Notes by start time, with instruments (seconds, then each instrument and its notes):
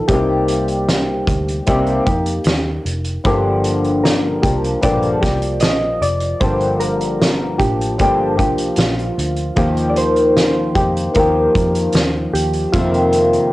Already playing: nylon-string guitar A#3 D#4 G4
0.08 picked electric bass C2, nylon-string guitar C3 G3 A#3, synth keys G4, kick, closed hi-hat
0.12 nylon-string guitar D#4 G4
0.48 closed hi-hat
0.68 closed hi-hat
0.89 snare, closed hi-hat
1.27 picked electric bass D2, kick, closed hi-hat
1.48 closed hi-hat
1.67 picked electric bass C2, nylon-string guitar C3 G3 A#3 D#4 G4, kick, closed hi-hat
1.86 closed hi-hat
2.06 picked electric bass F2, nylon-string guitar A#3 D#4 G4, kick, closed hi-hat
2.26 closed hi-hat
2.44 picked electric bass D#2, snare, closed hi-hat
2.85 picked electric bass F1, closed hi-hat
3.04 closed hi-hat
3.24 picked electric bass G1, nylon-string guitar G2 D3 F3 A#3 D4 G4, kick, closed hi-hat
3.64 closed hi-hat
3.84 closed hi-hat
4.04 synth keys A#4, snare, closed hi-hat
4.42 picked electric bass C2, nylon-string guitar F3 A#3 D4 G4, kick, closed hi-hat
4.64 closed hi-hat
4.82 picked electric bass A#1, nylon-string guitar G2 D3 F3 A#3 D4 G4, synth keys D5, kick, closed hi-hat
5.02 closed hi-hat
5.21 picked electric bass C2, nylon-string guitar F3 A#3 G4, kick, snare, closed hi-hat
5.42 closed hi-hat
5.60 picked electric bass A#1, synth keys D#5, snare, closed hi-hat
6.02 picked electric bass F1, synth keys D5, closed hi-hat
6.20 closed hi-hat
6.40 picked electric bass G1, nylon-string guitar G2 D3 F3 A#3 D4 G4, synth keys C5, kick, closed hi-hat
6.60 closed hi-hat
6.80 synth keys A#4, closed hi-hat
7.01 closed hi-hat
7.22 snare, closed hi-hat
7.58 picked electric bass A1, nylon-string guitar F3 A#3 D4 G4, synth keys G4, kick, closed hi-hat
7.81 closed hi-hat
7.98 picked electric bass G1, nylon-string guitar G2 D3 F3 A#3 D4 G4, kick, closed hi-hat
8.37 picked electric bass C2, nylon-string guitar F3 A#3 D4 G4, kick, closed hi-hat
8.58 closed hi-hat
8.76 picked electric bass A#1, synth keys F4, snare, closed hi-hat
8.99 closed hi-hat
9.18 picked electric bass D2, closed hi-hat
9.36 closed hi-hat
9.56 picked electric bass D#2, nylon-string guitar D#3 F3 A#3 D#4 G4, synth keys G4, kick, closed hi-hat
9.77 closed hi-hat
9.90 synth keys D5
9.96 synth keys C5, closed hi-hat
10.16 closed hi-hat
10.37 snare, closed hi-hat
10.75 picked electric bass F2, nylon-string guitar A#3 D#4 G4, kick, closed hi-hat
10.97 closed hi-hat
11.14 picked electric bass D#2, nylon-string guitar D#3 F3 A#3, synth keys A#4, kick, closed hi-hat
11.18 nylon-string guitar D#4 G4
11.55 picked electric bass F2, kick, closed hi-hat
11.75 closed hi-hat
11.92 picked electric bass D#2, snare, closed hi-hat
12.33 picked electric bass D#2, synth keys G4, closed hi-hat
12.53 closed hi-hat
12.72 nylon-string guitar F2 C3 D#3 A#3, picked electric bass F2, synth keys F4, kick, closed hi-hat
12.77 nylon-string guitar C4 F4
12.94 closed hi-hat
13.12 closed hi-hat
13.33 closed hi-hat